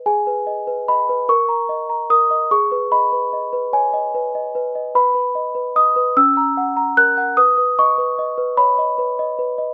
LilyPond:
\new Staff \with { instrumentName = "Celesta" } { \time 6/8 \key gis \minor \tempo 4. = 49 << { gis''4 b''8 cis'''4 dis'''8 | cis'''8 b''4 gis''4. | b''4 dis'''8 e'''4 fis'''8 | dis'''8 cis'''4 b''4. | } \\ { gis'16 b'16 dis''16 b'16 dis''16 b'16 ais'16 ais''16 dis''16 ais''16 ais'16 dis''16 | gis'16 b'16 dis''16 b'16 dis''16 b'16 cis''16 dis''16 b'16 dis''16 b'16 dis''16 | b'16 b'16 dis''16 b'16 dis''16 b'16 cis'16 ais''16 fis''16 ais''16 ais'16 fis''16 | b'16 b'16 dis''16 b'16 dis''16 b'16 cis''16 dis''16 b'16 dis''16 b'16 dis''16 | } >> }